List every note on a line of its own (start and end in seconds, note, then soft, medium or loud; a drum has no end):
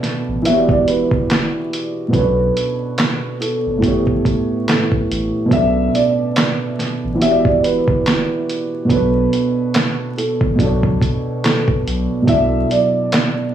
0.00 0.38 B2 medium
0.00 0.40 B3 medium
0.00 0.41 D4 medium
0.00 0.42 A4 medium
0.00 0.43 D5 medium
0.00 snare soft
0.00 closed hi-hat medium
0.28 0.43 A1 medium
0.42 1.04 E1 loud
0.42 2.09 E3 medium
0.42 2.09 B3 medium
0.42 0.68 E5 medium
0.42 closed hi-hat medium
0.47 2.11 F#4 medium
0.47 2.13 G4 medium
0.52 0.56 C#5 medium
0.59 2.17 D5 medium
0.69 0.85 D5 medium
0.69 kick medium
0.88 2.10 B4 medium
0.88 closed hi-hat medium
1.11 1.49 E1 medium
1.11 kick medium
1.30 snare medium
1.30 clap medium
1.30 closed hi-hat medium
1.73 closed hi-hat medium
2.08 3.76 B2 medium
2.08 3.78 B3 medium
2.13 2.51 B1 loud
2.13 2.21 C#4 soft
2.13 3.80 A4 medium
2.13 3.37 B4 medium
2.13 kick loud
2.13 closed hi-hat medium
2.18 3.82 D4 medium
2.18 3.81 C#5 medium
2.57 closed hi-hat medium
2.98 snare loud
2.98 clap medium
2.98 closed hi-hat medium
3.41 4.63 A4 medium
3.41 closed hi-hat medium
3.66 3.81 G1 medium
3.78 5.46 A2 medium
3.78 5.47 A3 medium
3.82 4.20 A1 loud
3.82 5.47 B3 medium
3.82 5.49 G4 medium
3.82 kick medium
3.82 closed hi-hat medium
3.88 5.51 C#5 medium
4.07 kick medium
4.25 kick medium
4.25 closed hi-hat medium
4.68 5.06 A4 medium
4.68 snare medium
4.68 clap medium
4.68 closed hi-hat medium
4.92 kick medium
5.10 5.32 A1 medium
5.10 closed hi-hat medium
5.46 7.14 B2 medium
5.46 7.15 B3 medium
5.51 5.89 B1 loud
5.51 5.59 C#4 soft
5.51 7.18 A4 medium
5.51 5.90 E5 loud
5.51 kick loud
5.51 closed hi-hat medium
5.56 7.20 D4 medium
5.56 7.19 D5 medium
5.95 6.57 D5 medium
5.95 closed hi-hat medium
6.36 snare loud
6.36 clap medium
6.36 closed hi-hat medium
6.79 snare soft
6.79 closed hi-hat medium
7.04 7.19 A1 medium
7.15 8.83 E3 medium
7.15 8.84 B3 medium
7.20 7.80 E1 loud
7.20 8.86 F#4 medium
7.20 8.87 G4 medium
7.20 7.46 E5 medium
7.20 closed hi-hat medium
7.25 7.30 C#5 medium
7.31 8.91 D5 medium
7.45 7.62 D5 medium
7.45 kick medium
7.64 8.86 B4 medium
7.64 closed hi-hat medium
7.88 8.25 E1 medium
7.88 kick medium
8.06 snare loud
8.06 clap medium
8.06 closed hi-hat medium
8.49 closed hi-hat medium
8.85 10.53 B2 medium
8.85 10.54 B3 medium
8.89 9.27 B1 loud
8.89 10.55 D4 medium
8.89 10.56 A4 medium
8.89 10.13 B4 loud
8.89 kick loud
8.89 closed hi-hat medium
8.95 10.58 C#5 medium
9.33 closed hi-hat medium
9.74 snare loud
9.74 clap medium
9.74 closed hi-hat medium
10.18 11.40 A4 medium
10.18 closed hi-hat medium
10.41 10.57 A1 medium
10.41 kick medium
10.55 10.96 B1 loud
10.55 12.20 B2 medium
10.55 12.24 B3 medium
10.55 kick medium
10.60 12.25 D4 medium
10.60 12.26 A4 medium
10.60 closed hi-hat medium
10.65 12.27 C#5 medium
10.83 kick medium
11.01 kick medium
11.01 closed hi-hat medium
11.44 11.82 A4 medium
11.44 snare medium
11.44 clap medium
11.44 closed hi-hat medium
11.68 kick medium
11.86 12.08 B1 loud
11.86 closed hi-hat medium
12.22 13.55 B2 medium
12.22 13.55 F#3 medium
12.26 12.65 B1 loud
12.26 13.55 D4 medium
12.26 13.55 E4 medium
12.26 13.55 A4 medium
12.26 12.66 E5 loud
12.26 kick loud
12.26 closed hi-hat medium
12.32 13.55 D5 medium
12.71 13.34 D5 medium
12.71 closed hi-hat medium
13.12 snare loud
13.12 clap medium
13.12 closed hi-hat medium